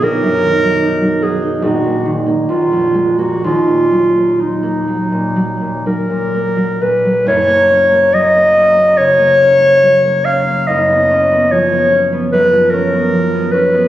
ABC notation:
X:1
M:4/4
L:1/16
Q:1/4=71
K:Ebm
V:1 name="Clarinet"
B6 A2 G3 z F3 G | F4 E6 B4 c2 | [K:F#] c4 d4 c6 e2 | d4 c4 B2 A4 B2 |]
V:2 name="Harp"
[=B,,,Cc] ^F,, ^D, ^F, ^D F, ^F D _B,,, B,, E, B, B,,, =F,, A, B, | E,, B,, G, B, E B, G, B,, G, B,, G, B,, B, G, B,, G, | [K:F#] [F,,,F,,] A, C A, F, A, C A, C, A, C A, F, A, C A, | [F,,,F,,] B, C B, E, B, C B, F,, E, C B, E, B, C B, |]